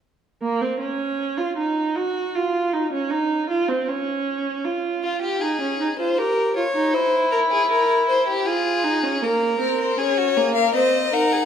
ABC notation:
X:1
M:3/4
L:1/16
Q:1/4=78
K:Bbm
V:1 name="Violin"
z12 | z12 | z12 | z12 |
z2 B c d3 f e2 g2 |]
V:2 name="Violin"
z12 | z12 | z2 F =G A3 c B2 d2 | c2 B A B2 c =G A4 |
B4 A G A B c2 B A |]
V:3 name="Viola"
z2 B, C D3 F E2 G2 | F2 E D E2 F C D4 | F4 E D E F =G2 F E | =E8 F2 _E D |
B,2 C2 D2 B,2 C2 E2 |]